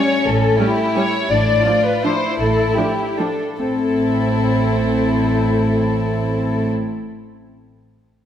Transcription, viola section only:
0, 0, Header, 1, 2, 480
1, 0, Start_track
1, 0, Key_signature, 0, "minor"
1, 0, Tempo, 338983
1, 360, Time_signature, 3, 2, 24, 8
1, 845, Tempo, 359066
1, 3245, Tempo, 400000
1, 5645, Tempo, 385109
1, 7085, Tempo, 364964
1, 10643, End_track
2, 0, Start_track
2, 0, Title_t, "Viola section"
2, 0, Program_c, 0, 48
2, 848, Note_on_c, 0, 55, 42
2, 850, Note_on_c, 0, 61, 43
2, 955, Note_off_c, 0, 55, 0
2, 957, Note_off_c, 0, 61, 0
2, 1329, Note_on_c, 0, 55, 38
2, 1330, Note_on_c, 0, 61, 40
2, 1436, Note_off_c, 0, 55, 0
2, 1437, Note_off_c, 0, 61, 0
2, 2271, Note_on_c, 0, 53, 38
2, 2271, Note_on_c, 0, 62, 39
2, 2378, Note_off_c, 0, 53, 0
2, 2378, Note_off_c, 0, 62, 0
2, 2770, Note_on_c, 0, 53, 36
2, 2770, Note_on_c, 0, 62, 34
2, 2877, Note_off_c, 0, 53, 0
2, 2877, Note_off_c, 0, 62, 0
2, 3706, Note_on_c, 0, 62, 32
2, 3707, Note_on_c, 0, 53, 32
2, 3802, Note_off_c, 0, 62, 0
2, 3803, Note_off_c, 0, 53, 0
2, 4205, Note_on_c, 0, 53, 32
2, 4208, Note_on_c, 0, 62, 27
2, 4301, Note_off_c, 0, 53, 0
2, 4304, Note_off_c, 0, 62, 0
2, 4690, Note_on_c, 0, 60, 29
2, 4694, Note_off_c, 0, 60, 0
2, 4694, Note_on_c, 0, 60, 38
2, 8584, Note_off_c, 0, 60, 0
2, 10643, End_track
0, 0, End_of_file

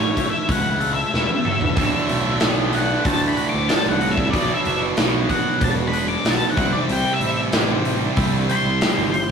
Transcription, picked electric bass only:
0, 0, Header, 1, 2, 480
1, 0, Start_track
1, 0, Tempo, 641026
1, 1329, Time_signature, 4, 2, 24, 8
1, 6973, End_track
2, 0, Start_track
2, 0, Title_t, "Picked electric bass"
2, 0, Program_c, 0, 34
2, 0, Note_on_c, 0, 33, 101
2, 94, Note_off_c, 0, 33, 0
2, 368, Note_on_c, 0, 37, 104
2, 769, Note_off_c, 0, 37, 0
2, 852, Note_on_c, 0, 28, 96
2, 951, Note_off_c, 0, 28, 0
2, 1094, Note_on_c, 0, 30, 96
2, 1326, Note_off_c, 0, 30, 0
2, 1326, Note_on_c, 0, 26, 91
2, 1428, Note_off_c, 0, 26, 0
2, 1574, Note_on_c, 0, 35, 88
2, 1772, Note_off_c, 0, 35, 0
2, 1813, Note_on_c, 0, 35, 97
2, 2212, Note_off_c, 0, 35, 0
2, 2286, Note_on_c, 0, 38, 90
2, 2487, Note_off_c, 0, 38, 0
2, 2652, Note_on_c, 0, 38, 80
2, 2751, Note_off_c, 0, 38, 0
2, 2892, Note_on_c, 0, 36, 85
2, 3245, Note_off_c, 0, 36, 0
2, 3245, Note_on_c, 0, 35, 87
2, 3346, Note_off_c, 0, 35, 0
2, 3494, Note_on_c, 0, 30, 97
2, 3692, Note_off_c, 0, 30, 0
2, 3728, Note_on_c, 0, 35, 103
2, 3928, Note_off_c, 0, 35, 0
2, 4204, Note_on_c, 0, 28, 101
2, 4606, Note_off_c, 0, 28, 0
2, 4678, Note_on_c, 0, 35, 90
2, 4782, Note_off_c, 0, 35, 0
2, 4921, Note_on_c, 0, 36, 104
2, 5024, Note_off_c, 0, 36, 0
2, 5158, Note_on_c, 0, 36, 98
2, 5262, Note_off_c, 0, 36, 0
2, 5398, Note_on_c, 0, 33, 86
2, 5602, Note_off_c, 0, 33, 0
2, 5643, Note_on_c, 0, 33, 102
2, 6046, Note_off_c, 0, 33, 0
2, 6119, Note_on_c, 0, 36, 96
2, 6323, Note_off_c, 0, 36, 0
2, 6479, Note_on_c, 0, 36, 85
2, 6582, Note_off_c, 0, 36, 0
2, 6725, Note_on_c, 0, 31, 88
2, 6973, Note_off_c, 0, 31, 0
2, 6973, End_track
0, 0, End_of_file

